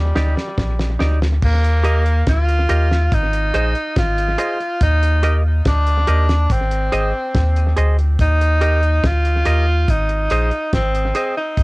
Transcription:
Already playing: D#2 G3
0.15 D2 D#4 G4 D5, snare
0.37 snare
0.58 A#1, kick, snare
0.79 snare
0.99 D2 D#4 G4 D5, snare
1.22 snare
1.42 D#2 A#3, kick, crash
1.64 closed hi-hat
1.83 G4 A#4 D#5, closed hi-hat
2.06 closed hi-hat
2.27 D2 F4, kick, snare, closed hi-hat
2.49 closed hi-hat
2.69 D#2 G4 A#4 D#5, closed hi-hat
2.91 snare
3.12 G#1 D#4, kick, closed hi-hat
3.33 closed hi-hat
3.54 A#1 G#4 C5 D#5, closed hi-hat
3.75 muted clean electric guitar stroke, closed hi-hat
3.96 G#1 F4, kick, snare, closed hi-hat
4.18 closed hi-hat
4.38 G#4 C5 D#5, closed hi-hat
4.60 closed hi-hat
4.81 D#2 D#4, kick, closed hi-hat
5.03 closed hi-hat
5.23 G4 A#4 D#5, closed hi-hat
5.65 D2 D4, kick, snare, closed hi-hat
5.87 closed hi-hat
6.07 D#2 G4 A#4 D#5, closed hi-hat
6.29 snare, closed hi-hat
6.50 G#1 C4, kick, closed hi-hat
6.71 closed hi-hat
6.92 G#1 G#4 C5 D#5, closed hi-hat
7.35 D#2, kick, snare, closed hi-hat
7.56 closed hi-hat
7.77 D2 G#4 C5 D#5, closed hi-hat
7.99 closed hi-hat
8.19 D#2 D#4, kick, closed hi-hat
8.41 closed hi-hat
8.61 G4 A#4 D#5, closed hi-hat
8.83 closed hi-hat
9.04 D2 F4, kick, snare, closed hi-hat
9.25 closed hi-hat
9.45 D#2 G4 A#4 D#5, closed hi-hat
9.88 G#1 D#4, kick, closed hi-hat
10.09 closed hi-hat
10.30 A#1 G#4 C5 D#5, closed hi-hat
10.51 muted clean electric guitar stroke, closed hi-hat
10.73 G#1 C4, kick, snare, closed hi-hat
10.95 closed hi-hat
11.15 C4 G#4 C5 D#5, closed hi-hat
11.37 D#4
11.57 D#2, kick, closed hi-hat

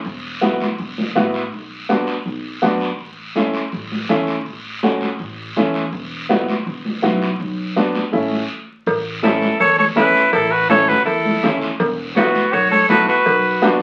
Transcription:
0.05 E1, high conga, long guiro
0.41 B3 E4 F#4, high conga, short guiro
0.60 high conga, short guiro
0.78 E1, high conga, long guiro
0.98 high conga
1.15 A1 B3 E4 F#4, high conga, short guiro
1.34 short guiro
1.52 B1, high conga, long guiro
1.89 B3 D4 F#4, high conga, short guiro
2.07 short guiro
2.26 B1, high conga, long guiro
2.62 F#2 B3 D4 F#4, high conga, short guiro
2.81 short guiro
2.99 A1, high conga, long guiro
3.35 A3 C#4 E4, high conga, short guiro
3.53 short guiro
3.72 A1, high conga, long guiro
3.92 high conga
4.09 E2 A3 C#4 E4, high conga, short guiro
4.27 short guiro
4.46 A1, high conga, long guiro
4.83 A3 C#4 F#4, high conga, short guiro
5.01 high conga, short guiro
5.19 A1, high conga, long guiro
5.56 E2 A3 C#4 E4, high conga, short guiro
5.74 short guiro
5.93 E1, high conga, long guiro
6.29 B3 E4 F#4, high conga, short guiro
6.48 high conga, short guiro
6.67 E1, high conga, long guiro
6.85 high conga
7.02 B1 B3 E4 F#4, high conga, short guiro
7.22 short guiro
7.40 B1, high conga, long guiro
7.76 B3 D4 F#4, high conga, short guiro
7.95 high conga, short guiro
8.12 A1 A3 C#4 E4, long guiro
8.32 high conga
8.86 A1, cowbell, high conga, long guiro
9.22 A3 C#4 E4 A4, cowbell, high conga, short guiro
9.42 high conga, short guiro
9.60 E2 A4 C#5, cowbell, high conga, long guiro
9.79 A4 C#5, high conga
9.95 E2 A3 C#4 E4 B4, cowbell, high conga, low timbale, short guiro
10.15 short guiro
10.33 A1 E4 A4, cowbell, high conga, long guiro
10.51 F#4 B4
10.69 A3 C#4 E4 A4 C#5, cowbell, high conga, short guiro
10.88 F#4 B4, high conga, low conga, short guiro
11.05 E2 E4 A4, cowbell, high conga, long guiro
11.25 high conga
11.43 E2 A3 C#4 E4, cowbell, high conga, low conga, short guiro
11.61 short guiro
11.80 E1, cowbell, high conga, long guiro
12.16 B3 E4 F#4, cowbell, high conga, short guiro
12.34 high conga, short guiro
12.53 B1 F#4 C#5, cowbell, high conga, long guiro
12.71 A4 C#5, high conga
12.89 B1 B3 E4 F#4 A4 B4, cowbell, high conga, short guiro
13.08 F#4 B4, short guiro
13.26 B1, cowbell, high conga, long guiro
13.62 B3 D4 F#4, cowbell, high conga, short guiro

